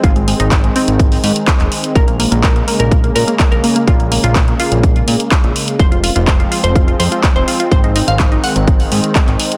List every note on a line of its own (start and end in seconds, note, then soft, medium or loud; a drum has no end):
0.00 0.34 G#1 loud
0.00 1.94 D#3 medium
0.00 5.76 G#3 medium
0.00 1.92 C4 medium
0.00 0.12 F4 medium
0.00 kick loud
0.00 closed hi-hat medium
0.16 0.24 G#3 medium
0.16 closed hi-hat soft
0.28 0.36 G#3 medium
0.28 open hi-hat loud
0.40 0.70 G#1 loud
0.40 0.48 D#4 medium
0.40 closed hi-hat medium
0.51 0.60 G#3 medium
0.51 kick loud
0.51 clap loud
0.51 closed hi-hat medium
0.64 0.72 G#3 medium
0.64 closed hi-hat soft
0.76 1.86 C4 medium
0.76 open hi-hat loud
0.88 1.18 G#1 medium
0.88 closed hi-hat medium
0.99 kick loud
0.99 closed hi-hat medium
1.12 open hi-hat medium
1.23 1.32 G#2 medium
1.23 open hi-hat loud
1.36 closed hi-hat medium
1.48 kick loud
1.48 clap loud
1.48 closed hi-hat medium
1.60 1.68 D#1 loud
1.60 clap soft
1.60 closed hi-hat soft
1.72 open hi-hat loud
1.84 closed hi-hat medium
1.95 2.26 A#1 loud
1.95 5.76 C#3 medium
1.95 5.76 A#3 medium
1.95 2.04 A#4 loud
1.95 kick loud
1.95 closed hi-hat medium
2.08 2.16 A#3 medium
2.08 closed hi-hat soft
2.19 2.28 A#3 medium
2.19 open hi-hat loud
2.32 2.62 A#1 loud
2.32 2.40 A#3 medium
2.32 closed hi-hat medium
2.44 2.52 A#4 loud
2.44 kick loud
2.44 clap loud
2.44 closed hi-hat medium
2.56 2.64 A#3 medium
2.56 closed hi-hat soft
2.68 2.76 A#3 medium
2.68 open hi-hat loud
2.80 3.10 A#1 medium
2.80 2.88 A#4 medium
2.80 closed hi-hat medium
2.91 3.00 A#3 medium
2.91 kick loud
2.91 closed hi-hat medium
3.04 3.12 A#3 medium
3.04 closed hi-hat soft
3.15 3.24 A#2 medium
3.15 3.24 A#4 loud
3.15 open hi-hat loud
3.28 3.36 A#3 medium
3.28 closed hi-hat medium
3.39 3.48 A#3 medium
3.39 kick loud
3.39 clap loud
3.39 closed hi-hat medium
3.52 3.60 A#1 medium
3.52 3.60 A#4 medium
3.52 closed hi-hat soft
3.64 3.72 A#3 medium
3.64 open hi-hat loud
3.76 3.84 A#3 medium
3.76 closed hi-hat medium
3.88 4.18 A#1 loud
3.88 3.96 F4 medium
3.88 kick loud
3.88 closed hi-hat medium
4.00 4.08 A#3 medium
4.00 closed hi-hat soft
4.12 4.20 A#3 medium
4.12 open hi-hat loud
4.24 4.54 A#1 loud
4.24 4.32 F4 medium
4.24 closed hi-hat medium
4.35 4.44 A#3 medium
4.35 kick loud
4.35 clap loud
4.35 closed hi-hat soft
4.48 4.56 A#3 medium
4.48 closed hi-hat soft
4.60 5.70 F4 medium
4.60 open hi-hat loud
4.72 5.02 A#1 medium
4.72 closed hi-hat medium
4.83 kick loud
4.83 closed hi-hat medium
4.96 closed hi-hat soft
5.08 5.16 A#2 medium
5.08 open hi-hat loud
5.20 closed hi-hat medium
5.32 kick loud
5.32 clap loud
5.32 closed hi-hat medium
5.44 5.52 A#1 medium
5.44 closed hi-hat soft
5.56 open hi-hat loud
5.68 closed hi-hat medium
5.79 6.10 F1 loud
5.79 7.70 F3 medium
5.79 9.57 G#3 medium
5.79 9.57 C4 medium
5.79 5.88 C5 loud
5.79 kick loud
5.79 closed hi-hat medium
5.92 6.00 F4 medium
5.92 closed hi-hat soft
6.03 6.12 F4 medium
6.03 open hi-hat loud
6.16 6.46 F1 loud
6.16 6.24 F4 medium
6.16 closed hi-hat medium
6.27 6.36 C5 loud
6.27 kick loud
6.27 clap loud
6.27 closed hi-hat medium
6.40 6.48 F4 medium
6.40 closed hi-hat soft
6.51 6.60 F4 medium
6.51 open hi-hat loud
6.64 6.94 F1 medium
6.64 6.72 C5 medium
6.64 closed hi-hat soft
6.76 6.84 F4 medium
6.76 kick loud
6.76 closed hi-hat medium
6.88 6.96 F4 medium
6.88 closed hi-hat soft
6.99 7.08 F2 medium
6.99 7.08 C5 medium
6.99 open hi-hat loud
7.12 7.20 F4 medium
7.12 closed hi-hat medium
7.24 7.32 F4 medium
7.24 kick loud
7.24 clap loud
7.24 closed hi-hat soft
7.36 7.44 F1 medium
7.36 7.44 C5 medium
7.36 closed hi-hat soft
7.48 7.56 F4 medium
7.48 open hi-hat loud
7.60 7.68 F4 medium
7.60 closed hi-hat medium
7.71 8.02 G#1 loud
7.71 9.57 D#3 medium
7.71 7.80 C5 loud
7.71 kick loud
7.71 closed hi-hat soft
7.84 7.92 D#4 medium
7.84 closed hi-hat soft
7.96 8.04 D#4 medium
7.96 open hi-hat loud
8.08 8.38 G#1 loud
8.08 8.16 F5 loud
8.08 closed hi-hat soft
8.19 8.28 D#4 medium
8.19 kick loud
8.19 clap loud
8.19 closed hi-hat soft
8.32 8.40 D#4 medium
8.32 closed hi-hat soft
8.44 9.54 F#5 medium
8.44 open hi-hat loud
8.56 8.86 G#1 medium
8.56 closed hi-hat soft
8.68 kick loud
8.68 closed hi-hat soft
8.80 open hi-hat medium
8.92 9.00 G#2 medium
8.92 open hi-hat loud
9.04 closed hi-hat medium
9.15 kick loud
9.15 clap loud
9.15 closed hi-hat soft
9.27 9.36 G#1 medium
9.27 clap soft
9.27 closed hi-hat soft
9.40 open hi-hat loud
9.52 closed hi-hat soft